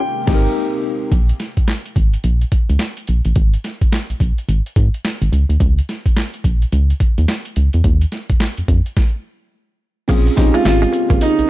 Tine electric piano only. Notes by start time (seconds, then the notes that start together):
0.27 C4 D#4 G4
0.34 A#4
10.08 C4 C#4 F4 G#4
10.36 C4 C#4 F4 G4